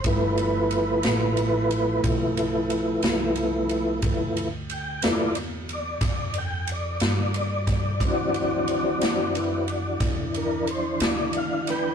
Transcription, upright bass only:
X:1
M:12/8
L:1/8
Q:3/8=60
K:Gmix
V:1 name="Upright bass" clef=bass
G,,,3 A,,,3 B,,,3 C,,3 | D,,3 E,,3 F,,3 G,,3 | D,,3 ^F,,3 E,,3 D,,3 |]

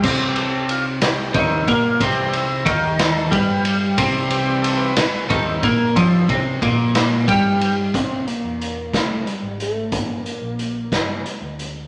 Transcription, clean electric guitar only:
X:1
M:6/8
L:1/8
Q:3/8=61
K:C
V:1 name="Clean electric guitar" clef=bass
C,3 C, _E, _B, | C,2 _E,2 G,2 | C,3 C, _E, _B, | F, C, _B,,2 G,2 |
[K:Cmix] z6 | z6 |]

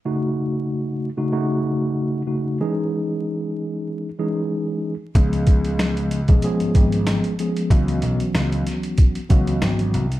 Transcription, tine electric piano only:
X:1
M:4/4
L:1/16
Q:"Swing 16ths" 1/4=94
K:C#m
V:1 name="Tine electric piano"
[C,A,DF]6 z [C,A,DF] [C,A,DF]6 [C,A,DF]2 | [E,G,CDG]8- [E,G,CDG] z [E,G,CDG]4- [E,G,CDG] z | [^E,G,B,CG]6 z [E,G,B,CG] [E,G,B,CG]6 [E,G,B,CG]2 | [E,F,B,CF]8- [E,F,B,CF] z [E,F,B,CF]4- [E,F,B,CF] z |]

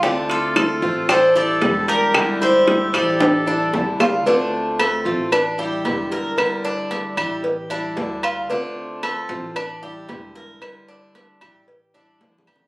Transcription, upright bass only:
X:1
M:4/4
L:1/8
Q:1/4=113
K:Dm
V:1 name="Upright bass" clef=bass
D,,3 A,,,3 E,,,2- | E,,,3 A,,,3 D,,2 | D,,3 A,,,3 E,,,2 | z3 A,,,3 D,,2 |
z3 A,,,3 E,,,2 | z3 A,,,3 A,,,2 |]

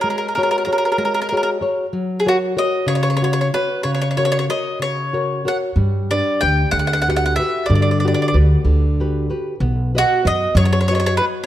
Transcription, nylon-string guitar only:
X:1
M:6/8
L:1/8
Q:3/8=63
K:F#mix
V:1 name="Nylon-string guitar"
[G,FGc] [FGc] [FGc] G, [FGc] [FGc] | F, [FAc] [FAc] C, [Fc] [Fc] | C, [FAc] [FAc] C, [FAc] [FAc] | =G, [=D=GB] [GB] =D, [FGB] [FGB] |
=D, [F=GB] [FGB] D, [FGB] [FGB] | B, [FBd] [FBd] F, [FBd] [FBd] |]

